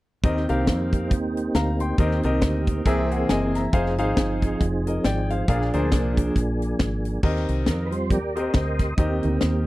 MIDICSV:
0, 0, Header, 1, 5, 480
1, 0, Start_track
1, 0, Key_signature, -3, "major"
1, 0, Tempo, 437318
1, 260, Time_signature, 4, 2, 24, 8
1, 10610, End_track
2, 0, Start_track
2, 0, Title_t, "Grand piano"
2, 0, Program_c, 0, 0
2, 260, Note_on_c, 0, 60, 82
2, 262, Note_on_c, 0, 67, 72
2, 263, Note_on_c, 0, 51, 69
2, 265, Note_on_c, 0, 70, 72
2, 266, Note_on_c, 0, 75, 86
2, 470, Note_off_c, 0, 60, 0
2, 471, Note_off_c, 0, 67, 0
2, 472, Note_off_c, 0, 70, 0
2, 473, Note_off_c, 0, 75, 0
2, 538, Note_on_c, 0, 60, 80
2, 538, Note_on_c, 0, 67, 72
2, 542, Note_on_c, 0, 70, 72
2, 546, Note_on_c, 0, 77, 79
2, 977, Note_off_c, 0, 51, 0
2, 1217, Note_off_c, 0, 60, 0
2, 1217, Note_off_c, 0, 67, 0
2, 1219, Note_off_c, 0, 70, 0
2, 1220, Note_off_c, 0, 77, 0
2, 1700, Note_on_c, 0, 82, 67
2, 1708, Note_on_c, 0, 77, 55
2, 1965, Note_off_c, 0, 82, 0
2, 1970, Note_off_c, 0, 77, 0
2, 1982, Note_on_c, 0, 84, 55
2, 1989, Note_on_c, 0, 79, 48
2, 2180, Note_on_c, 0, 60, 80
2, 2181, Note_on_c, 0, 51, 69
2, 2181, Note_on_c, 0, 67, 75
2, 2185, Note_on_c, 0, 70, 73
2, 2187, Note_on_c, 0, 75, 83
2, 2389, Note_off_c, 0, 60, 0
2, 2389, Note_off_c, 0, 67, 0
2, 2391, Note_off_c, 0, 70, 0
2, 2392, Note_off_c, 0, 75, 0
2, 2436, Note_off_c, 0, 84, 0
2, 2440, Note_off_c, 0, 79, 0
2, 2458, Note_on_c, 0, 60, 68
2, 2464, Note_on_c, 0, 67, 70
2, 2465, Note_on_c, 0, 70, 76
2, 2468, Note_on_c, 0, 75, 83
2, 2895, Note_off_c, 0, 51, 0
2, 3122, Note_off_c, 0, 60, 0
2, 3124, Note_off_c, 0, 70, 0
2, 3138, Note_off_c, 0, 67, 0
2, 3139, Note_on_c, 0, 60, 95
2, 3139, Note_on_c, 0, 68, 85
2, 3141, Note_off_c, 0, 75, 0
2, 3141, Note_on_c, 0, 70, 73
2, 3143, Note_on_c, 0, 48, 69
2, 3146, Note_on_c, 0, 76, 86
2, 3420, Note_on_c, 0, 78, 51
2, 3422, Note_off_c, 0, 76, 0
2, 3427, Note_on_c, 0, 72, 46
2, 3608, Note_off_c, 0, 78, 0
2, 3611, Note_off_c, 0, 72, 0
2, 3618, Note_on_c, 0, 80, 68
2, 3626, Note_on_c, 0, 75, 65
2, 3856, Note_off_c, 0, 48, 0
2, 3884, Note_off_c, 0, 80, 0
2, 3888, Note_off_c, 0, 75, 0
2, 3903, Note_on_c, 0, 82, 57
2, 3913, Note_on_c, 0, 76, 47
2, 3938, Note_off_c, 0, 60, 0
2, 3938, Note_off_c, 0, 68, 0
2, 3939, Note_off_c, 0, 70, 0
2, 4096, Note_on_c, 0, 63, 75
2, 4097, Note_on_c, 0, 68, 75
2, 4099, Note_on_c, 0, 72, 81
2, 4102, Note_on_c, 0, 77, 88
2, 4306, Note_off_c, 0, 63, 0
2, 4307, Note_off_c, 0, 68, 0
2, 4308, Note_off_c, 0, 72, 0
2, 4309, Note_off_c, 0, 77, 0
2, 4356, Note_off_c, 0, 82, 0
2, 4361, Note_off_c, 0, 76, 0
2, 4376, Note_on_c, 0, 63, 79
2, 4378, Note_on_c, 0, 68, 77
2, 4380, Note_on_c, 0, 72, 73
2, 4381, Note_on_c, 0, 77, 84
2, 5055, Note_off_c, 0, 63, 0
2, 5056, Note_off_c, 0, 68, 0
2, 5057, Note_off_c, 0, 72, 0
2, 5057, Note_off_c, 0, 77, 0
2, 5346, Note_on_c, 0, 75, 57
2, 5349, Note_on_c, 0, 70, 45
2, 5531, Note_off_c, 0, 75, 0
2, 5533, Note_off_c, 0, 70, 0
2, 5542, Note_on_c, 0, 79, 65
2, 5549, Note_on_c, 0, 74, 55
2, 5806, Note_off_c, 0, 79, 0
2, 5810, Note_off_c, 0, 74, 0
2, 5822, Note_on_c, 0, 77, 58
2, 5828, Note_on_c, 0, 72, 48
2, 6009, Note_off_c, 0, 77, 0
2, 6017, Note_on_c, 0, 62, 80
2, 6020, Note_on_c, 0, 68, 67
2, 6023, Note_on_c, 0, 46, 71
2, 6025, Note_on_c, 0, 70, 65
2, 6025, Note_on_c, 0, 77, 84
2, 6227, Note_off_c, 0, 62, 0
2, 6229, Note_off_c, 0, 68, 0
2, 6231, Note_off_c, 0, 70, 0
2, 6231, Note_off_c, 0, 77, 0
2, 6279, Note_off_c, 0, 72, 0
2, 6295, Note_on_c, 0, 62, 73
2, 6298, Note_on_c, 0, 68, 66
2, 6303, Note_on_c, 0, 70, 70
2, 6304, Note_on_c, 0, 72, 86
2, 6737, Note_off_c, 0, 46, 0
2, 6975, Note_off_c, 0, 62, 0
2, 6976, Note_off_c, 0, 68, 0
2, 6979, Note_off_c, 0, 70, 0
2, 6979, Note_off_c, 0, 72, 0
2, 7937, Note_on_c, 0, 51, 68
2, 7937, Note_on_c, 0, 60, 71
2, 7938, Note_on_c, 0, 67, 67
2, 7938, Note_on_c, 0, 70, 78
2, 7941, Note_on_c, 0, 75, 79
2, 8656, Note_off_c, 0, 51, 0
2, 8698, Note_off_c, 0, 60, 0
2, 8698, Note_off_c, 0, 67, 0
2, 8699, Note_off_c, 0, 70, 0
2, 8700, Note_off_c, 0, 75, 0
2, 9176, Note_on_c, 0, 60, 64
2, 9180, Note_on_c, 0, 67, 57
2, 9184, Note_on_c, 0, 70, 57
2, 9186, Note_on_c, 0, 75, 65
2, 9708, Note_off_c, 0, 60, 0
2, 9710, Note_off_c, 0, 67, 0
2, 9712, Note_off_c, 0, 70, 0
2, 9713, Note_off_c, 0, 75, 0
2, 9856, Note_on_c, 0, 60, 64
2, 9859, Note_on_c, 0, 67, 64
2, 9860, Note_on_c, 0, 70, 58
2, 9861, Note_on_c, 0, 51, 59
2, 9866, Note_on_c, 0, 75, 75
2, 10579, Note_off_c, 0, 51, 0
2, 10610, Note_off_c, 0, 60, 0
2, 10610, Note_off_c, 0, 67, 0
2, 10610, Note_off_c, 0, 70, 0
2, 10610, Note_off_c, 0, 75, 0
2, 10610, End_track
3, 0, Start_track
3, 0, Title_t, "Tonewheel organ"
3, 0, Program_c, 1, 16
3, 264, Note_on_c, 1, 58, 58
3, 265, Note_on_c, 1, 67, 73
3, 267, Note_on_c, 1, 63, 63
3, 269, Note_on_c, 1, 60, 61
3, 2160, Note_off_c, 1, 67, 0
3, 2195, Note_on_c, 1, 67, 70
3, 3111, Note_off_c, 1, 63, 0
3, 3136, Note_off_c, 1, 67, 0
3, 3139, Note_on_c, 1, 68, 75
3, 3140, Note_on_c, 1, 52, 68
3, 4060, Note_off_c, 1, 58, 0
3, 4088, Note_off_c, 1, 52, 0
3, 4089, Note_on_c, 1, 53, 72
3, 4093, Note_on_c, 1, 63, 59
3, 5977, Note_off_c, 1, 60, 0
3, 5989, Note_off_c, 1, 68, 0
3, 5996, Note_off_c, 1, 63, 0
3, 6014, Note_on_c, 1, 58, 67
3, 6015, Note_on_c, 1, 68, 71
3, 6021, Note_on_c, 1, 62, 61
3, 7896, Note_off_c, 1, 53, 0
3, 7918, Note_off_c, 1, 58, 0
3, 7918, Note_off_c, 1, 68, 0
3, 7921, Note_off_c, 1, 62, 0
3, 8412, Note_on_c, 1, 70, 89
3, 8627, Note_on_c, 1, 71, 66
3, 8633, Note_off_c, 1, 70, 0
3, 8683, Note_on_c, 1, 53, 41
3, 8687, Note_on_c, 1, 72, 69
3, 8691, Note_on_c, 1, 55, 38
3, 8699, Note_off_c, 1, 71, 0
3, 8699, Note_on_c, 1, 60, 52
3, 8887, Note_on_c, 1, 74, 98
3, 8896, Note_on_c, 1, 67, 62
3, 8898, Note_on_c, 1, 70, 69
3, 8899, Note_off_c, 1, 72, 0
3, 8987, Note_off_c, 1, 53, 0
3, 8992, Note_off_c, 1, 55, 0
3, 8996, Note_off_c, 1, 60, 0
3, 9158, Note_off_c, 1, 67, 0
3, 9170, Note_on_c, 1, 75, 103
3, 9171, Note_on_c, 1, 67, 75
3, 9172, Note_on_c, 1, 72, 78
3, 9183, Note_off_c, 1, 74, 0
3, 9812, Note_off_c, 1, 67, 0
3, 9812, Note_off_c, 1, 72, 0
3, 9816, Note_off_c, 1, 70, 0
3, 9845, Note_on_c, 1, 51, 61
3, 9855, Note_on_c, 1, 58, 57
3, 9860, Note_on_c, 1, 63, 55
3, 9861, Note_on_c, 1, 60, 59
3, 9863, Note_on_c, 1, 67, 79
3, 9876, Note_off_c, 1, 75, 0
3, 10195, Note_off_c, 1, 51, 0
3, 10203, Note_off_c, 1, 63, 0
3, 10610, Note_off_c, 1, 58, 0
3, 10610, Note_off_c, 1, 60, 0
3, 10610, Note_off_c, 1, 67, 0
3, 10610, End_track
4, 0, Start_track
4, 0, Title_t, "Fingered electric bass"
4, 0, Program_c, 2, 33
4, 261, Note_on_c, 2, 39, 93
4, 499, Note_off_c, 2, 39, 0
4, 544, Note_on_c, 2, 36, 79
4, 745, Note_on_c, 2, 41, 76
4, 761, Note_off_c, 2, 36, 0
4, 1220, Note_off_c, 2, 41, 0
4, 1220, Note_on_c, 2, 39, 92
4, 1627, Note_off_c, 2, 39, 0
4, 1699, Note_on_c, 2, 38, 82
4, 2106, Note_off_c, 2, 38, 0
4, 2176, Note_on_c, 2, 39, 100
4, 2415, Note_off_c, 2, 39, 0
4, 2463, Note_on_c, 2, 36, 78
4, 2630, Note_off_c, 2, 36, 0
4, 2660, Note_on_c, 2, 38, 81
4, 3066, Note_off_c, 2, 38, 0
4, 3136, Note_on_c, 2, 36, 80
4, 3544, Note_off_c, 2, 36, 0
4, 3622, Note_on_c, 2, 30, 75
4, 4027, Note_off_c, 2, 30, 0
4, 4097, Note_on_c, 2, 29, 89
4, 4386, Note_off_c, 2, 29, 0
4, 4386, Note_on_c, 2, 32, 77
4, 4552, Note_off_c, 2, 32, 0
4, 4580, Note_on_c, 2, 31, 78
4, 4987, Note_off_c, 2, 31, 0
4, 5058, Note_on_c, 2, 29, 83
4, 5465, Note_off_c, 2, 29, 0
4, 5542, Note_on_c, 2, 32, 96
4, 5948, Note_off_c, 2, 32, 0
4, 6019, Note_on_c, 2, 34, 101
4, 6257, Note_off_c, 2, 34, 0
4, 6302, Note_on_c, 2, 38, 76
4, 6469, Note_off_c, 2, 38, 0
4, 6501, Note_on_c, 2, 36, 72
4, 6908, Note_off_c, 2, 36, 0
4, 6979, Note_on_c, 2, 34, 70
4, 7387, Note_off_c, 2, 34, 0
4, 7465, Note_on_c, 2, 32, 80
4, 7870, Note_off_c, 2, 32, 0
4, 7938, Note_on_c, 2, 39, 85
4, 8177, Note_off_c, 2, 39, 0
4, 8223, Note_on_c, 2, 36, 81
4, 8429, Note_on_c, 2, 41, 70
4, 8445, Note_off_c, 2, 36, 0
4, 8897, Note_off_c, 2, 41, 0
4, 8897, Note_on_c, 2, 39, 82
4, 9306, Note_off_c, 2, 39, 0
4, 9378, Note_on_c, 2, 38, 86
4, 9788, Note_off_c, 2, 38, 0
4, 9856, Note_on_c, 2, 39, 92
4, 10097, Note_off_c, 2, 39, 0
4, 10148, Note_on_c, 2, 38, 78
4, 10315, Note_off_c, 2, 38, 0
4, 10347, Note_on_c, 2, 39, 82
4, 10610, Note_off_c, 2, 39, 0
4, 10610, End_track
5, 0, Start_track
5, 0, Title_t, "Drums"
5, 259, Note_on_c, 9, 36, 108
5, 264, Note_on_c, 9, 42, 77
5, 369, Note_off_c, 9, 36, 0
5, 374, Note_off_c, 9, 42, 0
5, 406, Note_on_c, 9, 38, 33
5, 516, Note_off_c, 9, 38, 0
5, 535, Note_on_c, 9, 42, 69
5, 645, Note_off_c, 9, 42, 0
5, 739, Note_on_c, 9, 38, 104
5, 742, Note_on_c, 9, 36, 77
5, 744, Note_on_c, 9, 42, 94
5, 848, Note_off_c, 9, 38, 0
5, 851, Note_off_c, 9, 36, 0
5, 854, Note_off_c, 9, 42, 0
5, 1018, Note_on_c, 9, 36, 70
5, 1024, Note_on_c, 9, 42, 70
5, 1128, Note_off_c, 9, 36, 0
5, 1134, Note_off_c, 9, 42, 0
5, 1219, Note_on_c, 9, 36, 88
5, 1226, Note_on_c, 9, 42, 81
5, 1328, Note_off_c, 9, 36, 0
5, 1336, Note_off_c, 9, 42, 0
5, 1504, Note_on_c, 9, 42, 67
5, 1614, Note_off_c, 9, 42, 0
5, 1699, Note_on_c, 9, 38, 92
5, 1703, Note_on_c, 9, 42, 79
5, 1808, Note_off_c, 9, 38, 0
5, 1813, Note_off_c, 9, 42, 0
5, 1975, Note_on_c, 9, 42, 64
5, 2085, Note_off_c, 9, 42, 0
5, 2176, Note_on_c, 9, 36, 103
5, 2177, Note_on_c, 9, 42, 78
5, 2286, Note_off_c, 9, 36, 0
5, 2287, Note_off_c, 9, 42, 0
5, 2318, Note_on_c, 9, 38, 32
5, 2428, Note_off_c, 9, 38, 0
5, 2450, Note_on_c, 9, 42, 72
5, 2560, Note_off_c, 9, 42, 0
5, 2653, Note_on_c, 9, 38, 104
5, 2658, Note_on_c, 9, 36, 85
5, 2658, Note_on_c, 9, 42, 94
5, 2763, Note_off_c, 9, 38, 0
5, 2768, Note_off_c, 9, 36, 0
5, 2768, Note_off_c, 9, 42, 0
5, 2934, Note_on_c, 9, 36, 78
5, 2937, Note_on_c, 9, 42, 66
5, 3044, Note_off_c, 9, 36, 0
5, 3046, Note_off_c, 9, 42, 0
5, 3135, Note_on_c, 9, 36, 89
5, 3140, Note_on_c, 9, 42, 78
5, 3245, Note_off_c, 9, 36, 0
5, 3250, Note_off_c, 9, 42, 0
5, 3417, Note_on_c, 9, 42, 67
5, 3527, Note_off_c, 9, 42, 0
5, 3614, Note_on_c, 9, 38, 95
5, 3619, Note_on_c, 9, 42, 78
5, 3724, Note_off_c, 9, 38, 0
5, 3728, Note_off_c, 9, 42, 0
5, 3896, Note_on_c, 9, 38, 35
5, 3897, Note_on_c, 9, 42, 66
5, 4006, Note_off_c, 9, 38, 0
5, 4006, Note_off_c, 9, 42, 0
5, 4095, Note_on_c, 9, 36, 111
5, 4095, Note_on_c, 9, 42, 72
5, 4204, Note_off_c, 9, 36, 0
5, 4205, Note_off_c, 9, 42, 0
5, 4238, Note_on_c, 9, 38, 31
5, 4347, Note_off_c, 9, 38, 0
5, 4371, Note_on_c, 9, 42, 74
5, 4481, Note_off_c, 9, 42, 0
5, 4575, Note_on_c, 9, 38, 111
5, 4578, Note_on_c, 9, 36, 82
5, 4581, Note_on_c, 9, 42, 83
5, 4685, Note_off_c, 9, 38, 0
5, 4688, Note_off_c, 9, 36, 0
5, 4690, Note_off_c, 9, 42, 0
5, 4855, Note_on_c, 9, 36, 72
5, 4860, Note_on_c, 9, 42, 71
5, 4965, Note_off_c, 9, 36, 0
5, 4970, Note_off_c, 9, 42, 0
5, 5056, Note_on_c, 9, 36, 87
5, 5063, Note_on_c, 9, 42, 77
5, 5166, Note_off_c, 9, 36, 0
5, 5172, Note_off_c, 9, 42, 0
5, 5343, Note_on_c, 9, 42, 70
5, 5453, Note_off_c, 9, 42, 0
5, 5537, Note_on_c, 9, 38, 90
5, 5542, Note_on_c, 9, 42, 79
5, 5647, Note_off_c, 9, 38, 0
5, 5651, Note_off_c, 9, 42, 0
5, 5820, Note_on_c, 9, 42, 59
5, 5930, Note_off_c, 9, 42, 0
5, 6017, Note_on_c, 9, 36, 108
5, 6019, Note_on_c, 9, 42, 86
5, 6127, Note_off_c, 9, 36, 0
5, 6129, Note_off_c, 9, 42, 0
5, 6162, Note_on_c, 9, 38, 31
5, 6272, Note_off_c, 9, 38, 0
5, 6294, Note_on_c, 9, 42, 63
5, 6404, Note_off_c, 9, 42, 0
5, 6495, Note_on_c, 9, 38, 101
5, 6500, Note_on_c, 9, 36, 81
5, 6501, Note_on_c, 9, 42, 91
5, 6605, Note_off_c, 9, 38, 0
5, 6610, Note_off_c, 9, 36, 0
5, 6610, Note_off_c, 9, 42, 0
5, 6776, Note_on_c, 9, 36, 76
5, 6778, Note_on_c, 9, 42, 66
5, 6886, Note_off_c, 9, 36, 0
5, 6888, Note_off_c, 9, 42, 0
5, 6979, Note_on_c, 9, 36, 80
5, 6985, Note_on_c, 9, 42, 81
5, 7088, Note_off_c, 9, 36, 0
5, 7094, Note_off_c, 9, 42, 0
5, 7264, Note_on_c, 9, 42, 66
5, 7374, Note_off_c, 9, 42, 0
5, 7457, Note_on_c, 9, 38, 95
5, 7462, Note_on_c, 9, 36, 89
5, 7462, Note_on_c, 9, 42, 80
5, 7567, Note_off_c, 9, 38, 0
5, 7571, Note_off_c, 9, 42, 0
5, 7572, Note_off_c, 9, 36, 0
5, 7738, Note_on_c, 9, 42, 66
5, 7848, Note_off_c, 9, 42, 0
5, 7937, Note_on_c, 9, 49, 91
5, 7938, Note_on_c, 9, 36, 104
5, 8047, Note_off_c, 9, 36, 0
5, 8047, Note_off_c, 9, 49, 0
5, 8079, Note_on_c, 9, 38, 37
5, 8189, Note_off_c, 9, 38, 0
5, 8215, Note_on_c, 9, 42, 71
5, 8324, Note_off_c, 9, 42, 0
5, 8412, Note_on_c, 9, 38, 102
5, 8417, Note_on_c, 9, 42, 88
5, 8522, Note_off_c, 9, 38, 0
5, 8527, Note_off_c, 9, 42, 0
5, 8695, Note_on_c, 9, 42, 67
5, 8804, Note_off_c, 9, 42, 0
5, 8895, Note_on_c, 9, 36, 84
5, 8899, Note_on_c, 9, 42, 76
5, 9005, Note_off_c, 9, 36, 0
5, 9009, Note_off_c, 9, 42, 0
5, 9181, Note_on_c, 9, 42, 65
5, 9290, Note_off_c, 9, 42, 0
5, 9370, Note_on_c, 9, 38, 102
5, 9375, Note_on_c, 9, 42, 76
5, 9379, Note_on_c, 9, 36, 96
5, 9480, Note_off_c, 9, 38, 0
5, 9484, Note_off_c, 9, 42, 0
5, 9489, Note_off_c, 9, 36, 0
5, 9651, Note_on_c, 9, 38, 31
5, 9652, Note_on_c, 9, 36, 80
5, 9652, Note_on_c, 9, 42, 59
5, 9761, Note_off_c, 9, 38, 0
5, 9762, Note_off_c, 9, 36, 0
5, 9762, Note_off_c, 9, 42, 0
5, 9853, Note_on_c, 9, 42, 79
5, 9854, Note_on_c, 9, 36, 116
5, 9963, Note_off_c, 9, 42, 0
5, 9964, Note_off_c, 9, 36, 0
5, 10127, Note_on_c, 9, 42, 71
5, 10237, Note_off_c, 9, 42, 0
5, 10327, Note_on_c, 9, 38, 105
5, 10332, Note_on_c, 9, 42, 87
5, 10436, Note_off_c, 9, 38, 0
5, 10442, Note_off_c, 9, 42, 0
5, 10610, End_track
0, 0, End_of_file